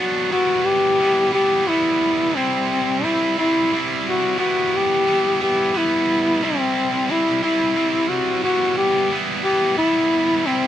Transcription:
0.00 0.31 F#3 medium
0.00 0.31 B3 medium
0.00 0.32 D4 medium
0.00 0.31 F#4 medium
0.31 1.00 G3 medium
0.31 1.00 B3 loud
0.31 1.01 E4 medium
0.31 0.67 F#4 loud
0.66 1.33 G4 loud
1.00 1.32 G3 medium
1.00 1.33 B3 medium
1.00 1.33 E4 loud
1.33 1.67 G3 medium
1.33 1.68 B3 loud
1.33 1.68 E4 medium
1.33 1.70 G4 loud
1.68 2.36 G3 medium
1.68 2.36 B3 medium
1.68 2.37 E4 medium
1.68 2.38 E4 loud
2.36 3.04 G3 loud
2.36 3.03 C4 loud
2.36 3.06 C4 medium
2.36 3.04 E4 loud
3.04 3.38 G3 medium
3.04 3.37 C4 medium
3.04 3.37 E4 loud
3.04 3.39 E4 loud
3.38 3.72 G3 loud
3.38 3.72 C4 medium
3.38 3.76 E4 loud
3.38 3.74 E4 medium
3.73 4.38 G3 medium
3.73 4.38 C4 medium
3.73 4.39 E4 medium
4.07 4.37 F#4 loud
4.38 5.07 G3 medium
4.38 5.07 B3 loud
4.38 5.08 E4 loud
4.38 4.77 F#4 loud
4.76 5.42 G4 loud
5.07 5.41 G3 medium
5.07 5.40 B3 medium
5.07 5.41 E4 loud
5.41 5.73 G3 medium
5.41 5.74 B3 loud
5.41 5.75 E4 loud
5.41 5.78 G4 loud
5.74 6.42 G3 medium
5.74 6.43 B3 medium
5.74 6.43 E4 loud
5.74 6.46 E4 loud
6.42 7.09 G3 loud
6.42 7.09 C4 loud
6.42 7.13 C4 medium
6.42 7.10 E4 loud
7.09 7.43 G3 medium
7.09 7.43 C4 medium
7.09 7.43 E4 medium
7.09 7.42 E4 loud
7.43 7.76 G3 loud
7.43 7.75 C4 medium
7.43 8.10 E4 medium
7.43 7.77 E4 loud
7.76 8.44 G3 medium
7.76 8.42 C4 medium
7.76 8.45 E4 medium
8.09 8.43 F#4 medium
8.43 9.11 G3 loud
8.43 9.12 B3 loud
8.43 9.12 E4 loud
8.43 8.75 F#4 loud
8.78 9.15 G4 loud
9.11 9.44 G3 medium
9.11 9.45 B3 medium
9.11 9.45 E4 medium
9.44 9.78 G3 loud
9.44 9.78 B3 loud
9.44 9.79 E4 loud
9.44 9.76 G4 loud
9.78 10.45 G3 medium
9.78 10.45 B3 medium
9.78 10.48 E4 loud
9.78 10.46 E4 loud
10.45 10.67 G3 medium
10.45 10.67 C4 loud
10.45 10.67 C4 medium
10.45 10.67 E4 loud

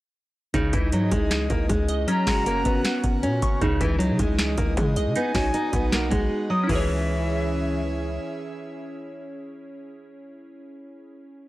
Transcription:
0.54 0.72 C#2 loud
0.54 0.71 C#3 loud
0.54 2.06 E3 medium
0.54 5.12 C#4 medium
0.54 1.50 D#4 loud
0.54 2.06 G#4 medium
0.54 2.06 D#5 medium
0.54 kick loud
0.54 closed hi-hat medium
0.73 0.94 C#2 loud
0.73 0.91 E3 medium
0.73 1.69 E4 medium
0.73 kick loud
0.73 closed hi-hat medium
0.92 1.11 G#2 loud
0.92 1.10 F#3 medium
0.92 closed hi-hat medium
1.11 1.49 C#2 loud
1.11 1.48 G#3 medium
1.11 kick medium
1.11 closed hi-hat medium
1.31 finger snap loud
1.31 snare loud
1.31 closed hi-hat medium
1.50 1.69 C#2 loud
1.50 1.68 A#3 medium
1.50 kick medium
1.50 closed hi-hat medium
1.69 2.06 C#2 loud
1.69 2.05 G#3 medium
1.69 kick medium
1.69 closed hi-hat medium
1.89 2.08 D#5 medium
1.89 closed hi-hat medium
2.07 2.25 F#3 medium
2.07 3.04 C#4 loud
2.07 3.60 F#4 medium
2.07 3.60 A#4 medium
2.07 3.60 F#5 medium
2.07 2.81 A#5 loud
2.07 closed hi-hat medium
2.27 2.64 F#1 loud
2.27 2.44 G#3 medium
2.27 3.23 F#4 medium
2.27 finger snap medium
2.27 kick medium
2.27 snare loud
2.27 open hi-hat medium
2.46 2.64 A#3 medium
2.46 closed hi-hat medium
2.65 2.84 F#1 loud
2.65 3.20 B3 medium
2.65 kick medium
2.65 closed hi-hat medium
2.85 3.21 F#5 medium
2.85 finger snap loud
2.85 snare loud
2.85 closed hi-hat medium
3.04 3.25 F#1 loud
3.04 kick loud
3.04 closed hi-hat medium
3.23 3.41 A#2 loud
3.23 3.59 C#4 medium
3.23 closed hi-hat medium
3.42 3.61 F#1 loud
3.42 3.62 C#6 medium
3.42 kick loud
3.42 closed hi-hat medium
3.61 3.80 C#2 loud
3.61 3.79 C#3 loud
3.61 5.14 E3 medium
3.61 4.58 D#4 loud
3.61 5.14 G#4 medium
3.61 6.66 D#5 medium
3.61 kick loud
3.61 closed hi-hat medium
3.81 4.12 C#2 loud
3.81 3.98 E3 medium
3.81 4.77 E4 medium
3.81 kick medium
3.81 closed hi-hat medium
3.99 4.17 F#3 medium
3.99 closed hi-hat medium
4.10 4.19 C#3 loud
4.19 4.56 C#2 loud
4.19 4.56 G#3 medium
4.19 kick medium
4.19 closed hi-hat medium
4.39 finger snap medium
4.39 snare loud
4.39 closed hi-hat medium
4.58 4.76 C#2 loud
4.58 4.75 A#3 medium
4.58 kick medium
4.58 closed hi-hat medium
4.77 4.98 C#3 loud
4.77 5.13 G#3 medium
4.77 kick medium
4.77 closed hi-hat medium
4.96 5.08 B1 loud
4.96 5.16 D#5 medium
4.96 closed hi-hat medium
5.06 5.15 C#3 loud
5.15 6.68 B3 medium
5.15 5.33 B3 loud
5.15 6.68 D#4 medium
5.15 6.12 D#4 medium
5.15 6.68 F#4 medium
5.15 5.88 G#5 loud
5.15 closed hi-hat medium
5.35 5.53 B1 loud
5.35 5.52 C#4 medium
5.35 6.31 F#4 medium
5.35 finger snap medium
5.35 kick medium
5.35 snare loud
5.35 open hi-hat medium
5.54 5.71 D#4 medium
5.54 closed hi-hat medium
5.73 6.10 B1 loud
5.73 5.91 B3 medium
5.73 kick loud
5.73 closed hi-hat medium
5.92 6.10 A#3 medium
5.92 6.28 F#5 medium
5.92 finger snap loud
5.92 snare loud
5.92 closed hi-hat medium
6.11 6.31 B1 loud
6.11 6.47 G#3 medium
6.11 kick medium
6.11 closed hi-hat medium
6.50 6.67 F#3 medium
6.50 6.69 D#6 medium
6.63 9.78 C#4 medium
6.63 9.82 E4 medium
6.69 8.19 C#2 loud
6.69 7.81 E3 medium
6.69 9.84 C#4 medium
6.69 9.84 E4 medium
6.69 9.84 G#4 medium
6.69 9.86 G#4 medium
6.69 9.84 E5 medium
6.69 7.81 E5 medium
6.69 kick loud
6.69 crash medium
6.75 9.90 C#5 loud

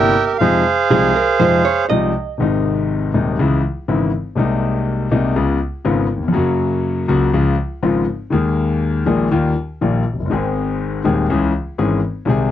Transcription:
0.00 0.12 G1 medium
0.00 0.12 G2 medium
0.00 0.12 C3 medium
0.00 0.12 G3 medium
0.00 0.12 A#3 medium
0.00 0.12 E4 medium
0.00 0.37 G4 medium
0.00 0.37 A#4 medium
0.00 0.25 E5 medium
0.00 0.25 G5 medium
0.27 0.33 E5 medium
0.38 0.62 F2 medium
0.38 0.61 C3 medium
0.38 0.62 F3 medium
0.38 0.62 G#3 medium
0.38 0.62 D#4 medium
0.38 1.86 G#4 medium
0.38 1.86 C5 medium
0.38 1.84 F5 medium
0.90 1.11 C2 medium
0.90 1.11 C3 medium
0.90 1.11 F3 medium
0.90 1.11 G#3 medium
0.90 1.11 D#4 medium
0.90 1.16 G#4 medium
1.16 1.41 A#4 medium
1.39 1.61 F2 medium
1.39 1.60 C3 medium
1.39 1.61 F3 medium
1.39 1.61 G#3 medium
1.39 1.61 D#4 medium
1.39 1.64 C5 medium
1.65 1.89 C#5 medium
1.89 2.11 C2 medium
1.89 2.11 C3 medium
1.89 2.11 F3 medium
1.89 2.11 G#3 medium
1.89 2.11 D#4 medium
1.89 2.36 D#5 medium
2.38 3.11 G#1 medium
2.38 3.11 G#2 medium
2.38 3.10 C3 medium
2.38 3.10 D#3 medium
2.38 3.11 G#3 medium
2.42 3.12 D#4 medium
3.14 3.35 D#1 medium
3.14 3.35 D#2 medium
3.14 3.35 C3 medium
3.14 3.35 D#3 medium
3.14 3.35 G#3 medium
3.14 3.35 D#4 medium
3.39 3.60 C#2 medium
3.39 3.60 C#3 medium
3.39 3.60 E3 medium
3.39 3.60 G#3 medium
3.39 3.60 E4 medium
3.88 4.09 G#1 medium
3.88 4.09 G#2 medium
3.88 4.09 C#3 medium
3.88 4.09 E3 medium
3.88 4.09 G#3 medium
3.88 4.10 E4 medium
4.36 5.08 C2 medium
4.36 5.08 C3 medium
4.36 5.07 G#3 medium
4.36 5.08 A#3 medium
4.36 5.09 D#4 medium
5.11 5.32 C2 medium
5.11 5.32 C3 medium
5.11 5.32 G#3 medium
5.11 5.32 A#3 medium
5.11 5.33 D#4 medium
5.36 5.57 C#2 medium
5.36 5.57 C#3 medium
5.36 5.57 G#3 medium
5.36 5.57 B3 medium
5.36 5.57 F4 medium
5.85 6.06 G#1 medium
5.85 6.06 G#2 medium
5.85 6.06 C#3 medium
5.85 6.06 G#3 medium
5.85 6.06 B3 medium
5.85 6.06 F4 medium
6.16 6.22 D#2 soft
6.22 6.29 E2 medium
6.28 6.35 F2 medium
6.33 7.05 F#2 medium
6.33 7.04 C#3 medium
6.33 7.05 F#3 medium
6.33 7.05 A#3 medium
6.37 7.06 F#4 medium
7.08 7.29 C#2 medium
7.08 7.29 C#3 medium
7.08 7.29 F#3 medium
7.08 7.29 A#3 medium
7.08 7.30 F#4 medium
7.33 7.54 C#2 medium
7.33 7.54 C#3 medium
7.33 7.54 F3 medium
7.33 7.54 G#3 medium
7.33 7.54 F4 medium
7.83 8.03 G#1 medium
7.83 8.03 G#2 medium
7.83 8.03 C#3 medium
7.83 8.03 F3 medium
7.83 8.03 G#3 medium
7.83 8.04 F4 medium
8.30 9.02 D#2 medium
8.30 8.32 D#3 medium
8.30 9.03 D#3 medium
8.30 9.02 G#3 medium
8.30 9.03 A#3 medium
8.34 9.04 G#4 medium
9.06 9.27 A#1 medium
9.06 9.27 A#2 medium
9.06 9.27 D#3 medium
9.06 9.27 G#3 medium
9.06 9.27 A#3 medium
9.06 9.27 G#4 medium
9.31 9.52 D#2 medium
9.31 9.52 D#3 medium
9.31 9.52 G3 medium
9.31 9.52 A#3 medium
9.31 9.52 F4 medium
9.81 10.02 A#1 medium
9.81 10.02 A#2 medium
9.81 10.02 D#3 medium
9.81 10.02 G3 medium
9.81 10.02 A#3 medium
9.81 10.02 F4 medium
10.13 10.18 F1 soft
10.19 10.25 F#1 medium
10.25 10.31 G1 medium
10.30 11.01 G#1 medium
10.30 11.01 G#2 medium
10.30 11.01 D#3 medium
10.30 11.01 G#3 medium
10.30 11.02 C4 medium
10.30 11.02 G#4 medium
11.04 11.26 D#1 medium
11.04 11.26 D#2 medium
11.04 11.25 D#3 medium
11.04 11.25 G#3 medium
11.04 11.26 C4 medium
11.04 11.26 G#4 medium
11.29 11.50 C#2 medium
11.29 11.50 C#3 medium
11.29 11.50 E3 medium
11.29 11.50 G#3 medium
11.29 11.50 C#4 medium
11.29 11.51 G#4 medium
11.78 11.99 G#1 medium
11.78 11.99 G#2 medium
11.78 11.99 E3 medium
11.78 11.99 G#3 medium
11.78 11.99 C#4 medium
11.78 11.99 G#4 medium
12.25 12.51 C2 medium
12.25 12.51 C3 medium
12.25 12.51 D#3 medium
12.25 12.51 G#3 medium
12.25 12.51 C4 medium
12.29 12.51 G#4 medium

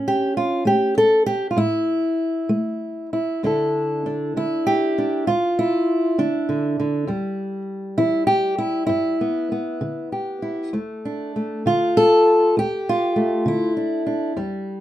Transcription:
0.00 0.30 A2 medium
0.00 1.53 C#4 medium
0.08 0.37 G4 medium
0.37 0.67 F4 medium
0.65 1.20 A3 medium
0.65 0.97 G4 medium
0.98 1.26 A4 loud
1.26 1.50 G4 medium
1.51 1.57 F4 medium
1.57 2.12 A2 medium
1.57 3.12 E4 medium
2.49 3.06 A3 medium
3.13 3.44 E4 soft
3.43 4.00 D2 medium
3.43 4.36 D3 soft
3.43 4.06 D4 soft
3.43 4.37 E4 soft
3.43 4.37 A4 soft
4.06 4.97 D4 soft
4.37 4.92 D3 medium
4.37 5.28 E4 medium
4.67 5.27 G4 loud
4.98 5.25 D4 soft
5.27 5.82 D2 medium
5.27 6.18 F4 medium
5.59 6.79 E4 medium
6.18 6.48 D3 medium
6.18 7.08 D4 medium
6.49 6.78 D3 soft
6.80 7.09 D3 soft
7.07 7.62 E2 medium
7.07 9.19 G3 soft
7.98 8.52 E3 medium
7.98 8.26 E4 medium
8.27 8.58 G4 loud
8.58 8.85 E4 medium
8.87 9.44 G2 medium
8.87 10.10 E4 medium
9.21 9.51 B3 soft
9.52 10.71 B3 soft
9.81 10.36 D3 medium
10.12 10.70 G4 soft
10.42 10.76 E4 soft
10.73 11.29 D2 medium
10.73 11.35 A3 soft
11.05 11.66 D4 soft
11.36 12.53 A3 soft
11.66 12.20 D3 medium
11.66 12.57 F4 medium
11.97 12.57 A4 loud
12.57 13.11 D2 medium
12.57 13.47 G4 loud
12.89 13.76 F4 medium
13.16 14.32 A3 soft
13.46 13.99 D3 medium
13.46 14.37 E4 medium
13.77 14.05 D4 soft
14.07 14.33 D4 soft
14.37 14.80 E2 medium
14.37 14.80 G3 medium

